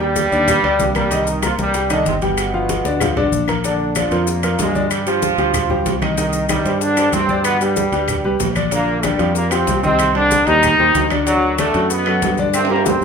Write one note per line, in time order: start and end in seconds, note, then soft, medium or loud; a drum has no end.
0.00 0.26 D#2 medium
0.00 0.91 G2 medium
0.00 0.91 G3 loud
0.00 0.26 G3 medium
0.00 0.26 G4 medium
0.00 0.27 G5 medium
0.00 high bongo soft
0.00 high conga soft
0.16 high bongo medium
0.16 high conga medium
0.16 high timbale medium
0.16 maracas medium
0.32 0.61 D#2 medium
0.32 0.45 D3 medium
0.32 0.45 D4 medium
0.32 0.45 D5 medium
0.32 maracas soft
0.48 0.60 G3 medium
0.48 0.61 G4 medium
0.48 0.61 G5 medium
0.48 high bongo medium
0.48 high conga soft
0.48 low conga medium
0.48 high timbale medium
0.48 claves medium
0.48 maracas medium
0.63 0.78 D2 medium
0.63 0.89 D3 medium
0.63 0.90 D4 medium
0.63 0.90 D5 medium
0.63 high bongo soft
0.63 high conga soft
0.63 high timbale medium
0.79 1.53 C2 medium
0.79 high bongo medium
0.79 low bongo medium
0.79 high conga medium
0.79 low timbale medium
0.79 maracas medium
0.95 1.25 G2 medium
0.95 1.25 G3 medium
0.95 1.08 A#3 medium
0.95 1.08 A#4 medium
0.95 1.09 A#5 medium
0.95 high bongo soft
0.95 high conga medium
0.95 high timbale loud
0.95 claves medium
0.95 maracas soft
1.11 1.37 D#3 medium
1.11 1.37 D#4 medium
1.11 1.37 D#5 medium
1.11 high bongo medium
1.11 high conga soft
1.11 high timbale medium
1.11 maracas medium
1.27 1.43 D#3 medium
1.27 1.43 D#4 medium
1.27 high conga soft
1.27 maracas medium
1.42 1.51 F3 medium
1.42 1.68 A#3 medium
1.42 1.51 F4 medium
1.42 1.69 A#4 medium
1.42 1.69 A#5 medium
1.42 high bongo medium
1.42 high conga medium
1.42 high timbale medium
1.42 claves medium
1.42 maracas medium
1.58 2.02 C2 medium
1.58 1.89 G2 medium
1.58 1.89 G3 loud
1.58 high conga medium
1.58 maracas soft
1.74 1.87 G3 medium
1.74 1.87 G4 medium
1.74 1.88 G5 medium
1.74 high bongo medium
1.74 high conga soft
1.74 high timbale medium
1.74 maracas medium
1.90 2.05 D3 medium
1.90 2.16 D#3 medium
1.90 2.06 D4 medium
1.90 2.16 D#4 medium
1.90 2.16 D#5 medium
1.90 high conga soft
1.90 high timbale medium
1.90 claves medium
1.90 maracas medium
2.06 2.79 G1 medium
2.06 2.14 C3 medium
2.06 2.14 C4 medium
2.06 high bongo medium
2.06 low bongo medium
2.06 high conga medium
2.06 maracas medium
2.22 3.29 B2 medium
2.22 2.48 G3 medium
2.22 3.29 B3 medium
2.22 2.48 G4 medium
2.22 2.48 G5 medium
2.22 high conga medium
2.22 high timbale medium
2.22 maracas soft
2.37 high bongo medium
2.37 high conga soft
2.37 high timbale medium
2.37 claves medium
2.37 maracas medium
2.54 2.79 F3 medium
2.54 2.80 F4 medium
2.54 2.80 F5 medium
2.54 high bongo soft
2.54 high conga soft
2.69 high bongo medium
2.69 high conga medium
2.69 high timbale medium
2.69 maracas medium
2.85 3.14 D2 medium
2.85 2.98 D3 medium
2.85 2.98 D4 medium
2.85 2.98 D5 medium
2.85 high bongo medium
2.85 maracas soft
3.00 3.14 F3 medium
3.00 3.14 F4 medium
3.00 3.14 F5 medium
3.00 high bongo loud
3.00 high conga soft
3.00 low conga medium
3.00 high timbale medium
3.00 claves medium
3.00 maracas medium
3.17 3.32 C2 medium
3.17 3.43 D3 medium
3.17 3.43 D4 medium
3.17 3.43 D5 medium
3.17 high bongo medium
3.17 high conga soft
3.17 low conga medium
3.17 high timbale medium
3.32 4.06 A#1 medium
3.32 high conga medium
3.32 maracas medium
3.48 3.61 A#3 medium
3.48 3.61 A#4 medium
3.48 3.62 A#5 medium
3.48 low bongo medium
3.48 high conga medium
3.48 high timbale loud
3.48 claves medium
3.48 maracas soft
3.64 3.90 D3 medium
3.64 3.94 D3 medium
3.64 3.90 D4 medium
3.64 3.94 D4 medium
3.64 3.91 D5 medium
3.64 high bongo medium
3.64 high conga soft
3.64 high timbale medium
3.64 maracas medium
3.80 high bongo soft
3.80 high conga soft
3.95 4.09 D3 medium
3.95 4.25 F3 medium
3.95 4.09 D4 medium
3.95 4.26 F4 medium
3.95 4.09 D5 medium
3.95 high bongo medium
3.95 high conga medium
3.95 high timbale medium
3.95 low timbale medium
3.95 claves medium
3.95 maracas medium
4.11 4.55 F2 medium
4.11 4.38 F3 medium
4.11 4.38 F4 medium
4.11 4.38 A#4 medium
4.11 high bongo soft
4.11 high timbale medium
4.11 maracas soft
4.27 4.60 A#2 medium
4.27 4.59 A#3 medium
4.27 high bongo medium
4.27 high conga soft
4.27 maracas medium
4.43 4.69 F3 medium
4.43 4.70 F4 medium
4.43 4.70 A#4 medium
4.43 high conga soft
4.43 high timbale medium
4.43 claves medium
4.43 maracas medium
4.59 5.33 G2 medium
4.59 4.89 A#2 medium
4.59 4.89 G#3 medium
4.59 high bongo medium
4.59 low bongo medium
4.59 high conga medium
4.59 high timbale medium
4.59 low timbale medium
4.59 maracas medium
4.75 5.01 D3 medium
4.75 5.01 D4 medium
4.75 5.01 D5 medium
4.75 high bongo soft
4.75 high conga medium
4.75 maracas soft
4.91 5.07 G2 medium
4.91 5.07 G3 medium
4.91 high bongo medium
4.91 high conga soft
4.91 high timbale medium
4.91 claves medium
4.91 maracas medium
5.06 5.97 F3 loud
5.06 5.33 G3 medium
5.06 5.98 F4 medium
5.06 5.33 G4 medium
5.06 5.33 C5 medium
5.06 high bongo soft
5.06 high conga soft
5.06 high timbale medium
5.06 maracas medium
5.22 high bongo medium
5.22 high conga medium
5.22 low timbale medium
5.22 maracas medium
5.38 5.82 D2 medium
5.38 5.64 G3 medium
5.38 5.64 G4 medium
5.38 5.65 C5 medium
5.38 high conga soft
5.38 high timbale medium
5.38 maracas soft
5.54 high bongo medium
5.54 high conga soft
5.54 low conga medium
5.54 high timbale medium
5.54 claves medium
5.54 maracas medium
5.70 5.96 G3 medium
5.70 5.96 G4 medium
5.70 5.97 C5 medium
5.70 high bongo soft
5.70 high conga soft
5.70 low conga medium
5.86 6.60 C2 medium
5.86 high bongo medium
5.86 low bongo medium
5.86 high conga medium
5.86 high timbale medium
5.86 low timbale medium
5.86 maracas medium
6.02 6.15 D#3 medium
6.02 6.15 D#4 medium
6.02 6.15 D#5 medium
6.02 high bongo soft
6.02 high conga medium
6.02 high timbale loud
6.02 claves medium
6.02 maracas soft
6.17 6.47 D#3 medium
6.17 6.44 D#3 medium
6.17 6.44 D#4 medium
6.17 6.48 D#4 medium
6.17 6.44 D#5 medium
6.17 high bongo medium
6.17 high conga soft
6.17 high timbale medium
6.17 maracas medium
6.33 high bongo soft
6.33 high conga soft
6.33 maracas medium
6.49 6.80 G2 medium
6.49 6.63 D#3 medium
6.49 6.79 G3 medium
6.49 6.63 D#4 medium
6.49 6.63 D#5 medium
6.49 high bongo medium
6.49 high conga loud
6.49 high timbale medium
6.49 low timbale medium
6.49 claves medium
6.49 maracas medium
6.65 7.09 G2 medium
6.65 6.91 G3 medium
6.65 6.92 G4 medium
6.65 6.92 C5 medium
6.65 high conga soft
6.65 high timbale medium
6.65 maracas soft
6.81 7.14 D3 medium
6.81 7.13 D4 loud
6.81 high bongo medium
6.81 high conga soft
6.81 maracas medium
6.97 7.23 G3 medium
6.97 7.24 G4 medium
6.97 7.24 C5 medium
6.97 high conga soft
6.97 high timbale medium
6.97 claves medium
6.97 maracas medium
7.13 7.87 G2 medium
7.13 7.43 C3 medium
7.13 7.42 C4 loud
7.13 high bongo medium
7.13 low bongo medium
7.13 high conga medium
7.13 high timbale medium
7.13 low timbale medium
7.13 maracas medium
7.29 7.55 D3 medium
7.29 7.55 D4 medium
7.29 7.55 D5 medium
7.29 high bongo soft
7.29 high conga medium
7.29 maracas soft
7.44 7.60 B2 medium
7.44 7.59 B3 loud
7.44 high bongo medium
7.44 high conga soft
7.44 high timbale medium
7.44 claves medium
7.44 maracas medium
7.61 8.26 G2 medium
7.61 8.25 G3 medium
7.61 7.87 G3 medium
7.61 7.87 G4 medium
7.61 7.87 B4 medium
7.61 high bongo soft
7.61 high conga soft
7.61 high timbale medium
7.61 maracas medium
7.76 high bongo medium
7.76 high conga medium
7.76 low timbale medium
7.76 maracas medium
7.92 8.22 D2 medium
7.92 8.19 G3 medium
7.92 8.19 G4 medium
7.92 8.19 B4 medium
7.92 high conga soft
7.92 high timbale medium
7.92 maracas soft
8.08 high bongo medium
8.08 high conga soft
8.08 low conga medium
8.08 high timbale medium
8.08 claves medium
8.08 maracas medium
8.24 8.39 C2 medium
8.24 8.50 G3 medium
8.24 8.51 G4 medium
8.24 8.51 B4 medium
8.24 high bongo soft
8.24 high conga soft
8.40 9.14 A#1 medium
8.40 high bongo medium
8.40 low bongo medium
8.40 high conga medium
8.40 high timbale medium
8.40 low timbale medium
8.40 maracas medium
8.56 8.69 D3 medium
8.56 8.69 D4 medium
8.56 8.69 D5 medium
8.56 high bongo soft
8.56 high conga medium
8.56 high timbale medium
8.56 claves medium
8.56 maracas soft
8.71 9.03 A#2 medium
8.71 8.98 D3 medium
8.71 9.02 A#3 loud
8.71 8.98 D4 medium
8.71 8.98 D5 medium
8.71 high bongo medium
8.71 high conga soft
8.71 high timbale medium
8.71 maracas medium
8.88 high bongo soft
8.88 high conga soft
9.03 9.36 G2 medium
9.03 9.16 D3 medium
9.03 9.36 G3 medium
9.03 9.17 D4 medium
9.03 9.17 D5 medium
9.03 high bongo medium
9.03 high conga medium
9.03 high timbale medium
9.03 low timbale medium
9.03 claves medium
9.03 maracas medium
9.19 9.64 F2 medium
9.19 9.45 F3 medium
9.19 9.45 F4 medium
9.19 9.46 G4 medium
9.19 high bongo soft
9.19 high conga soft
9.19 high timbale medium
9.19 maracas soft
9.35 9.51 A#2 medium
9.35 9.50 A#3 medium
9.35 high bongo medium
9.35 high conga soft
9.35 maracas medium
9.51 9.83 C3 medium
9.51 9.77 F3 medium
9.51 9.82 C4 medium
9.51 9.78 F4 medium
9.51 9.78 G4 medium
9.51 high conga soft
9.51 high timbale medium
9.51 claves medium
9.51 maracas medium
9.67 10.42 C2 medium
9.67 high bongo medium
9.67 low bongo medium
9.67 high conga medium
9.67 high timbale medium
9.67 low timbale medium
9.67 maracas medium
9.83 10.14 C3 medium
9.83 10.09 D#3 medium
9.83 10.13 C4 loud
9.83 10.10 D#4 medium
9.83 10.10 D#5 medium
9.83 high bongo soft
9.83 high conga medium
9.83 maracas soft
9.99 high bongo medium
9.99 high conga soft
9.99 high timbale medium
9.99 claves medium
9.99 maracas medium
10.15 10.46 D3 medium
10.15 10.41 G3 medium
10.15 10.45 D4 loud
10.15 10.41 G4 medium
10.15 10.42 C5 medium
10.15 high bongo soft
10.15 high conga soft
10.15 high timbale medium
10.31 high bongo medium
10.31 high conga medium
10.31 low timbale medium
10.31 maracas medium
10.47 10.77 D#2 medium
10.47 11.11 D#3 medium
10.47 10.73 G3 medium
10.47 11.11 D#4 loud
10.47 10.73 G4 medium
10.47 10.74 C5 medium
10.47 high conga soft
10.47 high timbale medium
10.47 maracas soft
10.63 high bongo medium
10.63 high conga soft
10.63 low conga medium
10.63 high timbale medium
10.63 claves medium
10.63 maracas medium
10.79 10.94 D#2 medium
10.79 11.05 G3 medium
10.79 11.05 G4 medium
10.79 11.06 C5 medium
10.79 high bongo soft
10.79 high conga soft
10.95 11.69 D2 medium
10.95 high bongo medium
10.95 low bongo medium
10.95 high conga medium
10.95 high timbale medium
10.95 low timbale medium
10.95 maracas medium
11.10 11.24 D3 medium
11.10 11.24 D4 medium
11.10 11.24 D5 medium
11.10 high bongo soft
11.10 high conga medium
11.10 high timbale loud
11.10 claves medium
11.10 maracas soft
11.27 11.57 F#2 medium
11.27 11.53 D3 medium
11.27 11.56 F#3 medium
11.27 11.53 D4 medium
11.27 11.53 D5 medium
11.27 high bongo medium
11.27 high conga soft
11.27 high timbale medium
11.27 maracas medium
11.43 high bongo soft
11.43 high conga soft
11.58 11.89 A2 medium
11.58 11.72 D3 medium
11.58 11.88 A3 loud
11.58 11.72 D4 medium
11.58 11.72 D5 medium
11.58 high bongo medium
11.58 high conga medium
11.58 high timbale medium
11.58 low timbale medium
11.58 claves medium
11.58 maracas medium
11.74 12.19 F#2 medium
11.74 12.01 F#3 medium
11.74 12.01 F#4 medium
11.74 12.01 A4 medium
11.74 high bongo soft
11.74 high timbale medium
11.74 maracas soft
11.90 12.36 B2 medium
11.90 12.35 B3 loud
11.90 high bongo medium
11.90 high conga soft
11.90 maracas medium
12.06 12.33 F#3 medium
12.06 12.33 F#4 medium
12.06 12.33 A4 medium
12.06 high conga soft
12.06 high timbale medium
12.06 claves medium
12.22 12.96 G2 medium
12.22 high bongo medium
12.22 low bongo medium
12.22 high conga medium
12.22 high timbale medium
12.22 low timbale medium
12.22 maracas medium
12.38 12.64 D3 medium
12.38 12.65 D4 medium
12.38 12.65 D5 medium
12.38 high bongo soft
12.38 high conga medium
12.38 maracas soft
12.54 12.70 C3 medium
12.54 12.69 C4 loud
12.54 high bongo medium
12.54 high conga soft
12.54 high timbale medium
12.54 claves medium
12.54 maracas medium
12.65 high timbale medium
12.70 12.86 A#2 medium
12.70 12.96 G3 medium
12.70 12.85 A#3 medium
12.70 12.97 G4 medium
12.70 12.97 C5 medium
12.70 high bongo soft
12.70 high conga soft
12.76 high timbale medium
12.86 13.04 C3 medium
12.86 13.04 C4 medium
12.86 high bongo medium
12.86 high conga loud
12.86 low timbale medium
12.86 maracas medium
13.01 13.04 G2 medium